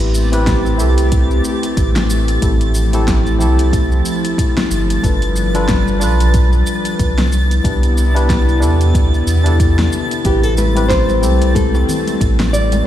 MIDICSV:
0, 0, Header, 1, 7, 480
1, 0, Start_track
1, 0, Tempo, 652174
1, 1786, Time_signature, 4, 2, 24, 8
1, 9471, End_track
2, 0, Start_track
2, 0, Title_t, "Synth texture"
2, 0, Program_c, 0, 99
2, 0, Note_on_c, 0, 93, 86
2, 9471, Note_off_c, 0, 93, 0
2, 9471, End_track
3, 0, Start_track
3, 0, Title_t, "Nylon-string guitar"
3, 0, Program_c, 1, 24
3, 7552, Note_on_c, 1, 67, 90
3, 7683, Note_off_c, 1, 67, 0
3, 7683, Note_on_c, 1, 69, 82
3, 7784, Note_off_c, 1, 69, 0
3, 7787, Note_on_c, 1, 71, 95
3, 8009, Note_off_c, 1, 71, 0
3, 8012, Note_on_c, 1, 72, 101
3, 8470, Note_off_c, 1, 72, 0
3, 8500, Note_on_c, 1, 69, 95
3, 9221, Note_off_c, 1, 69, 0
3, 9224, Note_on_c, 1, 74, 106
3, 9458, Note_off_c, 1, 74, 0
3, 9471, End_track
4, 0, Start_track
4, 0, Title_t, "Tine electric piano"
4, 0, Program_c, 2, 4
4, 0, Note_on_c, 2, 60, 71
4, 0, Note_on_c, 2, 64, 63
4, 0, Note_on_c, 2, 67, 65
4, 0, Note_on_c, 2, 71, 75
4, 12, Control_c, 2, 64, 127
4, 206, Note_off_c, 2, 60, 0
4, 208, Note_off_c, 2, 64, 0
4, 210, Note_off_c, 2, 67, 0
4, 214, Note_off_c, 2, 71, 0
4, 234, Note_on_c, 2, 60, 94
4, 239, Note_on_c, 2, 64, 80
4, 243, Note_on_c, 2, 67, 86
4, 247, Note_on_c, 2, 71, 106
4, 327, Note_off_c, 2, 60, 0
4, 329, Note_off_c, 2, 64, 0
4, 331, Note_off_c, 2, 67, 0
4, 333, Note_off_c, 2, 71, 0
4, 566, Note_on_c, 2, 60, 81
4, 576, Note_on_c, 2, 64, 80
4, 585, Note_on_c, 2, 67, 83
4, 593, Note_on_c, 2, 69, 93
4, 1752, Note_off_c, 2, 60, 0
4, 1756, Note_off_c, 2, 64, 0
4, 1761, Note_off_c, 2, 67, 0
4, 1765, Note_off_c, 2, 69, 0
4, 1778, Note_on_c, 2, 60, 69
4, 1784, Note_on_c, 2, 64, 68
4, 1787, Note_on_c, 2, 67, 65
4, 1794, Note_on_c, 2, 69, 80
4, 1796, Control_c, 2, 64, 0
4, 1932, Control_c, 2, 64, 127
4, 2126, Note_off_c, 2, 60, 0
4, 2129, Note_off_c, 2, 64, 0
4, 2130, Note_off_c, 2, 67, 0
4, 2134, Note_off_c, 2, 69, 0
4, 2158, Note_on_c, 2, 60, 92
4, 2162, Note_on_c, 2, 64, 82
4, 2166, Note_on_c, 2, 67, 84
4, 2170, Note_on_c, 2, 69, 107
4, 2249, Note_off_c, 2, 60, 0
4, 2251, Note_off_c, 2, 64, 0
4, 2253, Note_off_c, 2, 67, 0
4, 2255, Note_off_c, 2, 69, 0
4, 2491, Note_on_c, 2, 60, 90
4, 2501, Note_on_c, 2, 64, 78
4, 2510, Note_on_c, 2, 67, 81
4, 2518, Note_on_c, 2, 69, 97
4, 3674, Note_off_c, 2, 60, 0
4, 3679, Note_off_c, 2, 64, 0
4, 3683, Note_off_c, 2, 67, 0
4, 3687, Note_off_c, 2, 69, 0
4, 3703, Note_on_c, 2, 62, 75
4, 3707, Note_on_c, 2, 65, 67
4, 3711, Note_on_c, 2, 69, 67
4, 3716, Control_c, 2, 64, 0
4, 3717, Note_on_c, 2, 71, 74
4, 3842, Control_c, 2, 64, 127
4, 4049, Note_off_c, 2, 62, 0
4, 4051, Note_off_c, 2, 65, 0
4, 4053, Note_off_c, 2, 69, 0
4, 4055, Note_off_c, 2, 71, 0
4, 4081, Note_on_c, 2, 62, 96
4, 4084, Note_on_c, 2, 65, 84
4, 4088, Note_on_c, 2, 69, 87
4, 4093, Note_on_c, 2, 71, 108
4, 4170, Note_off_c, 2, 62, 0
4, 4172, Note_off_c, 2, 65, 0
4, 4174, Note_off_c, 2, 69, 0
4, 4176, Note_off_c, 2, 71, 0
4, 4414, Note_on_c, 2, 62, 92
4, 4424, Note_on_c, 2, 65, 83
4, 4434, Note_on_c, 2, 69, 82
4, 4444, Note_on_c, 2, 71, 95
4, 5368, Note_off_c, 2, 62, 0
4, 5373, Note_off_c, 2, 65, 0
4, 5378, Note_off_c, 2, 69, 0
4, 5383, Note_off_c, 2, 71, 0
4, 5395, Control_c, 2, 64, 0
4, 5518, Control_c, 2, 64, 127
4, 5624, Note_on_c, 2, 62, 76
4, 5625, Note_on_c, 2, 64, 66
4, 5633, Note_on_c, 2, 67, 63
4, 5635, Note_on_c, 2, 71, 76
4, 5969, Note_off_c, 2, 62, 0
4, 5970, Note_off_c, 2, 64, 0
4, 5974, Note_off_c, 2, 67, 0
4, 5975, Note_off_c, 2, 71, 0
4, 5996, Note_on_c, 2, 62, 90
4, 5999, Note_on_c, 2, 64, 87
4, 6006, Note_on_c, 2, 67, 89
4, 6010, Note_on_c, 2, 71, 102
4, 6088, Note_off_c, 2, 62, 0
4, 6089, Note_off_c, 2, 64, 0
4, 6093, Note_off_c, 2, 67, 0
4, 6095, Note_off_c, 2, 71, 0
4, 6331, Note_on_c, 2, 62, 87
4, 6339, Note_on_c, 2, 64, 81
4, 6348, Note_on_c, 2, 67, 80
4, 6356, Note_on_c, 2, 69, 93
4, 6928, Note_off_c, 2, 62, 0
4, 6932, Note_off_c, 2, 64, 0
4, 6937, Note_off_c, 2, 67, 0
4, 6940, Note_off_c, 2, 69, 0
4, 6947, Note_on_c, 2, 62, 87
4, 6957, Note_on_c, 2, 64, 80
4, 6967, Note_on_c, 2, 67, 78
4, 6977, Note_on_c, 2, 69, 101
4, 7514, Note_off_c, 2, 62, 0
4, 7518, Note_off_c, 2, 64, 0
4, 7523, Note_off_c, 2, 67, 0
4, 7528, Note_off_c, 2, 69, 0
4, 7538, Note_on_c, 2, 60, 70
4, 7544, Note_on_c, 2, 64, 64
4, 7549, Note_on_c, 2, 67, 66
4, 7553, Note_on_c, 2, 71, 77
4, 7555, Control_c, 2, 64, 0
4, 7681, Control_c, 2, 64, 127
4, 7886, Note_off_c, 2, 60, 0
4, 7889, Note_off_c, 2, 64, 0
4, 7892, Note_off_c, 2, 67, 0
4, 7894, Note_off_c, 2, 71, 0
4, 7913, Note_on_c, 2, 60, 89
4, 7916, Note_on_c, 2, 64, 87
4, 7923, Note_on_c, 2, 67, 81
4, 7928, Note_on_c, 2, 71, 99
4, 8006, Note_off_c, 2, 60, 0
4, 8008, Note_off_c, 2, 64, 0
4, 8011, Note_off_c, 2, 67, 0
4, 8014, Note_off_c, 2, 71, 0
4, 8251, Note_on_c, 2, 60, 87
4, 8262, Note_on_c, 2, 64, 86
4, 8267, Note_on_c, 2, 67, 80
4, 8277, Note_on_c, 2, 69, 100
4, 9434, Note_off_c, 2, 60, 0
4, 9439, Note_off_c, 2, 64, 0
4, 9442, Note_off_c, 2, 67, 0
4, 9447, Note_off_c, 2, 69, 0
4, 9471, End_track
5, 0, Start_track
5, 0, Title_t, "Analog synth pad"
5, 0, Program_c, 3, 89
5, 0, Note_on_c, 3, 57, 79
5, 0, Note_on_c, 3, 60, 78
5, 0, Note_on_c, 3, 67, 96
5, 1768, Note_off_c, 3, 60, 0
5, 1768, Note_off_c, 3, 67, 0
5, 1790, Note_on_c, 3, 53, 88
5, 1794, Note_on_c, 3, 64, 75
5, 3677, Note_off_c, 3, 57, 0
5, 3691, Note_off_c, 3, 64, 0
5, 3697, Note_on_c, 3, 55, 85
5, 3697, Note_on_c, 3, 71, 89
5, 5359, Note_off_c, 3, 53, 0
5, 5365, Note_off_c, 3, 55, 0
5, 5365, Note_off_c, 3, 71, 0
5, 5394, Note_on_c, 3, 48, 84
5, 5395, Note_on_c, 3, 59, 78
5, 5398, Note_on_c, 3, 64, 91
5, 7529, Note_off_c, 3, 48, 0
5, 7529, Note_off_c, 3, 59, 0
5, 7531, Note_off_c, 3, 64, 0
5, 7542, Note_on_c, 3, 55, 87
5, 7546, Note_on_c, 3, 57, 76
5, 7547, Note_on_c, 3, 60, 96
5, 9445, Note_off_c, 3, 55, 0
5, 9447, Note_off_c, 3, 60, 0
5, 9471, Note_off_c, 3, 57, 0
5, 9471, End_track
6, 0, Start_track
6, 0, Title_t, "Sub bass"
6, 0, Program_c, 4, 38
6, 0, Note_on_c, 4, 33, 93
6, 587, Note_on_c, 4, 36, 98
6, 598, Note_off_c, 4, 33, 0
6, 1039, Note_off_c, 4, 36, 0
6, 1301, Note_on_c, 4, 33, 82
6, 1756, Note_off_c, 4, 33, 0
6, 1783, Note_on_c, 4, 33, 96
6, 2509, Note_on_c, 4, 36, 101
6, 2520, Note_off_c, 4, 33, 0
6, 2960, Note_off_c, 4, 36, 0
6, 3468, Note_on_c, 4, 31, 95
6, 3672, Note_off_c, 4, 31, 0
6, 3707, Note_on_c, 4, 31, 93
6, 4430, Note_on_c, 4, 35, 100
6, 4442, Note_off_c, 4, 31, 0
6, 4881, Note_off_c, 4, 35, 0
6, 5147, Note_on_c, 4, 36, 85
6, 5599, Note_off_c, 4, 36, 0
6, 5624, Note_on_c, 4, 36, 102
6, 6345, Note_on_c, 4, 40, 97
6, 6356, Note_off_c, 4, 36, 0
6, 6579, Note_off_c, 4, 40, 0
6, 6584, Note_on_c, 4, 38, 91
6, 6791, Note_off_c, 4, 38, 0
6, 6822, Note_on_c, 4, 40, 94
6, 7276, Note_off_c, 4, 40, 0
6, 7543, Note_on_c, 4, 33, 92
6, 8266, Note_on_c, 4, 36, 100
6, 8277, Note_off_c, 4, 33, 0
6, 8719, Note_off_c, 4, 36, 0
6, 8987, Note_on_c, 4, 33, 84
6, 9439, Note_off_c, 4, 33, 0
6, 9471, End_track
7, 0, Start_track
7, 0, Title_t, "Drums"
7, 0, Note_on_c, 9, 42, 33
7, 1, Note_on_c, 9, 82, 21
7, 74, Note_off_c, 9, 42, 0
7, 75, Note_off_c, 9, 82, 0
7, 108, Note_on_c, 9, 82, 71
7, 182, Note_off_c, 9, 82, 0
7, 242, Note_on_c, 9, 42, 43
7, 244, Note_on_c, 9, 82, 34
7, 316, Note_off_c, 9, 42, 0
7, 317, Note_off_c, 9, 82, 0
7, 344, Note_on_c, 9, 36, 110
7, 347, Note_on_c, 9, 38, 74
7, 347, Note_on_c, 9, 42, 56
7, 348, Note_on_c, 9, 82, 43
7, 418, Note_off_c, 9, 36, 0
7, 421, Note_off_c, 9, 38, 0
7, 421, Note_off_c, 9, 42, 0
7, 422, Note_off_c, 9, 82, 0
7, 486, Note_on_c, 9, 82, 23
7, 560, Note_off_c, 9, 82, 0
7, 586, Note_on_c, 9, 82, 76
7, 660, Note_off_c, 9, 82, 0
7, 720, Note_on_c, 9, 42, 46
7, 721, Note_on_c, 9, 82, 35
7, 793, Note_off_c, 9, 42, 0
7, 794, Note_off_c, 9, 82, 0
7, 823, Note_on_c, 9, 42, 63
7, 824, Note_on_c, 9, 36, 109
7, 825, Note_on_c, 9, 82, 49
7, 897, Note_off_c, 9, 42, 0
7, 898, Note_off_c, 9, 36, 0
7, 898, Note_off_c, 9, 82, 0
7, 961, Note_on_c, 9, 82, 20
7, 1035, Note_off_c, 9, 82, 0
7, 1064, Note_on_c, 9, 82, 83
7, 1137, Note_off_c, 9, 82, 0
7, 1202, Note_on_c, 9, 42, 47
7, 1203, Note_on_c, 9, 82, 35
7, 1275, Note_off_c, 9, 42, 0
7, 1276, Note_off_c, 9, 82, 0
7, 1303, Note_on_c, 9, 36, 103
7, 1304, Note_on_c, 9, 42, 58
7, 1306, Note_on_c, 9, 82, 44
7, 1377, Note_off_c, 9, 36, 0
7, 1378, Note_off_c, 9, 42, 0
7, 1379, Note_off_c, 9, 82, 0
7, 1443, Note_on_c, 9, 38, 86
7, 1443, Note_on_c, 9, 42, 33
7, 1444, Note_on_c, 9, 82, 22
7, 1517, Note_off_c, 9, 38, 0
7, 1517, Note_off_c, 9, 42, 0
7, 1518, Note_off_c, 9, 82, 0
7, 1545, Note_on_c, 9, 82, 85
7, 1619, Note_off_c, 9, 82, 0
7, 1680, Note_on_c, 9, 42, 44
7, 1681, Note_on_c, 9, 82, 32
7, 1753, Note_off_c, 9, 42, 0
7, 1754, Note_off_c, 9, 82, 0
7, 1783, Note_on_c, 9, 42, 56
7, 1784, Note_on_c, 9, 36, 108
7, 1784, Note_on_c, 9, 82, 43
7, 1856, Note_off_c, 9, 42, 0
7, 1857, Note_off_c, 9, 36, 0
7, 1858, Note_off_c, 9, 82, 0
7, 1920, Note_on_c, 9, 42, 33
7, 1921, Note_on_c, 9, 82, 23
7, 1994, Note_off_c, 9, 42, 0
7, 1995, Note_off_c, 9, 82, 0
7, 2021, Note_on_c, 9, 82, 77
7, 2094, Note_off_c, 9, 82, 0
7, 2159, Note_on_c, 9, 42, 41
7, 2160, Note_on_c, 9, 82, 34
7, 2232, Note_off_c, 9, 42, 0
7, 2233, Note_off_c, 9, 82, 0
7, 2264, Note_on_c, 9, 36, 118
7, 2266, Note_on_c, 9, 38, 75
7, 2266, Note_on_c, 9, 42, 54
7, 2267, Note_on_c, 9, 82, 45
7, 2338, Note_off_c, 9, 36, 0
7, 2339, Note_off_c, 9, 38, 0
7, 2339, Note_off_c, 9, 42, 0
7, 2340, Note_off_c, 9, 82, 0
7, 2402, Note_on_c, 9, 82, 25
7, 2475, Note_off_c, 9, 82, 0
7, 2508, Note_on_c, 9, 82, 80
7, 2581, Note_off_c, 9, 82, 0
7, 2643, Note_on_c, 9, 42, 47
7, 2644, Note_on_c, 9, 82, 35
7, 2716, Note_off_c, 9, 42, 0
7, 2718, Note_off_c, 9, 82, 0
7, 2744, Note_on_c, 9, 36, 112
7, 2747, Note_on_c, 9, 42, 59
7, 2749, Note_on_c, 9, 82, 48
7, 2818, Note_off_c, 9, 36, 0
7, 2821, Note_off_c, 9, 42, 0
7, 2822, Note_off_c, 9, 82, 0
7, 2884, Note_on_c, 9, 82, 20
7, 2957, Note_off_c, 9, 82, 0
7, 2985, Note_on_c, 9, 82, 81
7, 3058, Note_off_c, 9, 82, 0
7, 3125, Note_on_c, 9, 42, 45
7, 3127, Note_on_c, 9, 82, 34
7, 3199, Note_off_c, 9, 42, 0
7, 3200, Note_off_c, 9, 82, 0
7, 3225, Note_on_c, 9, 36, 102
7, 3230, Note_on_c, 9, 42, 60
7, 3231, Note_on_c, 9, 82, 48
7, 3299, Note_off_c, 9, 36, 0
7, 3304, Note_off_c, 9, 42, 0
7, 3305, Note_off_c, 9, 82, 0
7, 3368, Note_on_c, 9, 38, 82
7, 3368, Note_on_c, 9, 42, 31
7, 3369, Note_on_c, 9, 82, 24
7, 3441, Note_off_c, 9, 38, 0
7, 3441, Note_off_c, 9, 42, 0
7, 3442, Note_off_c, 9, 82, 0
7, 3468, Note_on_c, 9, 82, 88
7, 3541, Note_off_c, 9, 82, 0
7, 3608, Note_on_c, 9, 42, 47
7, 3609, Note_on_c, 9, 82, 33
7, 3682, Note_off_c, 9, 42, 0
7, 3683, Note_off_c, 9, 82, 0
7, 3706, Note_on_c, 9, 36, 108
7, 3709, Note_on_c, 9, 42, 49
7, 3710, Note_on_c, 9, 82, 47
7, 3780, Note_off_c, 9, 36, 0
7, 3783, Note_off_c, 9, 42, 0
7, 3784, Note_off_c, 9, 82, 0
7, 3843, Note_on_c, 9, 42, 29
7, 3844, Note_on_c, 9, 82, 23
7, 3916, Note_off_c, 9, 42, 0
7, 3917, Note_off_c, 9, 82, 0
7, 3944, Note_on_c, 9, 82, 78
7, 4018, Note_off_c, 9, 82, 0
7, 4083, Note_on_c, 9, 42, 41
7, 4084, Note_on_c, 9, 82, 34
7, 4157, Note_off_c, 9, 42, 0
7, 4158, Note_off_c, 9, 82, 0
7, 4185, Note_on_c, 9, 38, 73
7, 4185, Note_on_c, 9, 42, 50
7, 4186, Note_on_c, 9, 82, 44
7, 4187, Note_on_c, 9, 36, 110
7, 4258, Note_off_c, 9, 38, 0
7, 4258, Note_off_c, 9, 42, 0
7, 4259, Note_off_c, 9, 82, 0
7, 4260, Note_off_c, 9, 36, 0
7, 4326, Note_on_c, 9, 82, 26
7, 4399, Note_off_c, 9, 82, 0
7, 4427, Note_on_c, 9, 82, 82
7, 4501, Note_off_c, 9, 82, 0
7, 4566, Note_on_c, 9, 42, 44
7, 4568, Note_on_c, 9, 82, 35
7, 4640, Note_off_c, 9, 42, 0
7, 4641, Note_off_c, 9, 82, 0
7, 4665, Note_on_c, 9, 42, 55
7, 4666, Note_on_c, 9, 82, 49
7, 4668, Note_on_c, 9, 36, 112
7, 4739, Note_off_c, 9, 42, 0
7, 4740, Note_off_c, 9, 82, 0
7, 4741, Note_off_c, 9, 36, 0
7, 4803, Note_on_c, 9, 82, 21
7, 4877, Note_off_c, 9, 82, 0
7, 4907, Note_on_c, 9, 82, 81
7, 4980, Note_off_c, 9, 82, 0
7, 5042, Note_on_c, 9, 42, 42
7, 5044, Note_on_c, 9, 82, 36
7, 5116, Note_off_c, 9, 42, 0
7, 5117, Note_off_c, 9, 82, 0
7, 5148, Note_on_c, 9, 36, 106
7, 5148, Note_on_c, 9, 42, 52
7, 5150, Note_on_c, 9, 82, 49
7, 5221, Note_off_c, 9, 36, 0
7, 5222, Note_off_c, 9, 42, 0
7, 5223, Note_off_c, 9, 82, 0
7, 5288, Note_on_c, 9, 38, 80
7, 5288, Note_on_c, 9, 42, 31
7, 5289, Note_on_c, 9, 82, 23
7, 5362, Note_off_c, 9, 38, 0
7, 5362, Note_off_c, 9, 42, 0
7, 5363, Note_off_c, 9, 82, 0
7, 5390, Note_on_c, 9, 82, 90
7, 5463, Note_off_c, 9, 82, 0
7, 5529, Note_on_c, 9, 42, 44
7, 5531, Note_on_c, 9, 82, 35
7, 5603, Note_off_c, 9, 42, 0
7, 5604, Note_off_c, 9, 82, 0
7, 5626, Note_on_c, 9, 36, 108
7, 5629, Note_on_c, 9, 42, 50
7, 5631, Note_on_c, 9, 82, 45
7, 5700, Note_off_c, 9, 36, 0
7, 5703, Note_off_c, 9, 42, 0
7, 5704, Note_off_c, 9, 82, 0
7, 5764, Note_on_c, 9, 42, 31
7, 5766, Note_on_c, 9, 82, 22
7, 5838, Note_off_c, 9, 42, 0
7, 5839, Note_off_c, 9, 82, 0
7, 5871, Note_on_c, 9, 82, 79
7, 5944, Note_off_c, 9, 82, 0
7, 6009, Note_on_c, 9, 42, 41
7, 6010, Note_on_c, 9, 82, 35
7, 6083, Note_off_c, 9, 42, 0
7, 6084, Note_off_c, 9, 82, 0
7, 6105, Note_on_c, 9, 36, 121
7, 6109, Note_on_c, 9, 38, 70
7, 6109, Note_on_c, 9, 42, 49
7, 6110, Note_on_c, 9, 82, 43
7, 6179, Note_off_c, 9, 36, 0
7, 6182, Note_off_c, 9, 38, 0
7, 6182, Note_off_c, 9, 42, 0
7, 6184, Note_off_c, 9, 82, 0
7, 6247, Note_on_c, 9, 82, 24
7, 6320, Note_off_c, 9, 82, 0
7, 6346, Note_on_c, 9, 82, 81
7, 6420, Note_off_c, 9, 82, 0
7, 6483, Note_on_c, 9, 42, 44
7, 6484, Note_on_c, 9, 82, 36
7, 6556, Note_off_c, 9, 42, 0
7, 6558, Note_off_c, 9, 82, 0
7, 6584, Note_on_c, 9, 36, 113
7, 6588, Note_on_c, 9, 42, 56
7, 6589, Note_on_c, 9, 82, 47
7, 6658, Note_off_c, 9, 36, 0
7, 6661, Note_off_c, 9, 42, 0
7, 6663, Note_off_c, 9, 82, 0
7, 6727, Note_on_c, 9, 82, 21
7, 6800, Note_off_c, 9, 82, 0
7, 6826, Note_on_c, 9, 82, 80
7, 6900, Note_off_c, 9, 82, 0
7, 6962, Note_on_c, 9, 42, 44
7, 6964, Note_on_c, 9, 82, 36
7, 7036, Note_off_c, 9, 42, 0
7, 7037, Note_off_c, 9, 82, 0
7, 7064, Note_on_c, 9, 36, 106
7, 7066, Note_on_c, 9, 42, 55
7, 7067, Note_on_c, 9, 82, 49
7, 7138, Note_off_c, 9, 36, 0
7, 7139, Note_off_c, 9, 42, 0
7, 7140, Note_off_c, 9, 82, 0
7, 7204, Note_on_c, 9, 38, 80
7, 7204, Note_on_c, 9, 42, 31
7, 7206, Note_on_c, 9, 82, 24
7, 7278, Note_off_c, 9, 38, 0
7, 7278, Note_off_c, 9, 42, 0
7, 7279, Note_off_c, 9, 82, 0
7, 7305, Note_on_c, 9, 82, 93
7, 7379, Note_off_c, 9, 82, 0
7, 7444, Note_on_c, 9, 42, 39
7, 7445, Note_on_c, 9, 82, 33
7, 7517, Note_off_c, 9, 42, 0
7, 7519, Note_off_c, 9, 82, 0
7, 7543, Note_on_c, 9, 42, 53
7, 7544, Note_on_c, 9, 82, 45
7, 7545, Note_on_c, 9, 36, 107
7, 7616, Note_off_c, 9, 42, 0
7, 7618, Note_off_c, 9, 36, 0
7, 7618, Note_off_c, 9, 82, 0
7, 7680, Note_on_c, 9, 42, 30
7, 7681, Note_on_c, 9, 82, 23
7, 7754, Note_off_c, 9, 42, 0
7, 7755, Note_off_c, 9, 82, 0
7, 7784, Note_on_c, 9, 82, 78
7, 7789, Note_on_c, 9, 60, 58
7, 7790, Note_on_c, 9, 63, 87
7, 7857, Note_off_c, 9, 82, 0
7, 7863, Note_off_c, 9, 60, 0
7, 7864, Note_off_c, 9, 63, 0
7, 7924, Note_on_c, 9, 42, 39
7, 7925, Note_on_c, 9, 82, 33
7, 7927, Note_on_c, 9, 60, 46
7, 7997, Note_off_c, 9, 42, 0
7, 7998, Note_off_c, 9, 82, 0
7, 8001, Note_off_c, 9, 60, 0
7, 8024, Note_on_c, 9, 36, 112
7, 8026, Note_on_c, 9, 38, 72
7, 8026, Note_on_c, 9, 42, 54
7, 8027, Note_on_c, 9, 82, 43
7, 8097, Note_off_c, 9, 36, 0
7, 8099, Note_off_c, 9, 38, 0
7, 8099, Note_off_c, 9, 42, 0
7, 8101, Note_off_c, 9, 82, 0
7, 8161, Note_on_c, 9, 63, 65
7, 8164, Note_on_c, 9, 82, 23
7, 8234, Note_off_c, 9, 63, 0
7, 8237, Note_off_c, 9, 82, 0
7, 8267, Note_on_c, 9, 82, 84
7, 8341, Note_off_c, 9, 82, 0
7, 8402, Note_on_c, 9, 42, 42
7, 8403, Note_on_c, 9, 82, 33
7, 8476, Note_off_c, 9, 42, 0
7, 8477, Note_off_c, 9, 82, 0
7, 8504, Note_on_c, 9, 36, 102
7, 8506, Note_on_c, 9, 63, 91
7, 8509, Note_on_c, 9, 42, 58
7, 8510, Note_on_c, 9, 82, 47
7, 8577, Note_off_c, 9, 36, 0
7, 8579, Note_off_c, 9, 63, 0
7, 8582, Note_off_c, 9, 42, 0
7, 8583, Note_off_c, 9, 82, 0
7, 8646, Note_on_c, 9, 60, 62
7, 8646, Note_on_c, 9, 82, 21
7, 8720, Note_off_c, 9, 60, 0
7, 8720, Note_off_c, 9, 82, 0
7, 8751, Note_on_c, 9, 64, 78
7, 8752, Note_on_c, 9, 82, 78
7, 8824, Note_off_c, 9, 64, 0
7, 8826, Note_off_c, 9, 82, 0
7, 8883, Note_on_c, 9, 63, 57
7, 8887, Note_on_c, 9, 42, 44
7, 8889, Note_on_c, 9, 82, 33
7, 8956, Note_off_c, 9, 63, 0
7, 8961, Note_off_c, 9, 42, 0
7, 8962, Note_off_c, 9, 82, 0
7, 8985, Note_on_c, 9, 36, 105
7, 8989, Note_on_c, 9, 42, 58
7, 8990, Note_on_c, 9, 82, 45
7, 9059, Note_off_c, 9, 36, 0
7, 9062, Note_off_c, 9, 42, 0
7, 9064, Note_off_c, 9, 82, 0
7, 9125, Note_on_c, 9, 38, 78
7, 9125, Note_on_c, 9, 42, 30
7, 9126, Note_on_c, 9, 82, 22
7, 9198, Note_off_c, 9, 38, 0
7, 9198, Note_off_c, 9, 42, 0
7, 9200, Note_off_c, 9, 82, 0
7, 9230, Note_on_c, 9, 82, 89
7, 9303, Note_off_c, 9, 82, 0
7, 9363, Note_on_c, 9, 42, 40
7, 9364, Note_on_c, 9, 82, 35
7, 9365, Note_on_c, 9, 60, 44
7, 9369, Note_on_c, 9, 63, 92
7, 9436, Note_off_c, 9, 42, 0
7, 9438, Note_off_c, 9, 60, 0
7, 9438, Note_off_c, 9, 82, 0
7, 9442, Note_off_c, 9, 63, 0
7, 9471, End_track
0, 0, End_of_file